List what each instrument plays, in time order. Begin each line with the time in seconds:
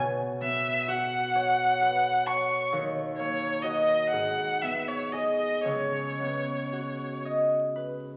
Already playing: harp B2 B3 B4 C#5
0.41 harp B3, violin E5
0.88 harp F#4, violin F#5
1.35 harp C#5
1.82 harp B4
2.27 harp C#5, violin C#6
2.72 harp D#2
3.17 harp A#3, violin C#5
3.62 harp F#4 D#5, violin D#5
4.09 harp G#2, violin F#5
4.62 harp B3, violin E5
4.88 violin C#5
5.12 harp G#4 D#5, violin D#5
5.65 harp C#2, violin C#5
6.20 harp B3
6.73 harp F#4
7.25 harp D#5
7.76 harp B4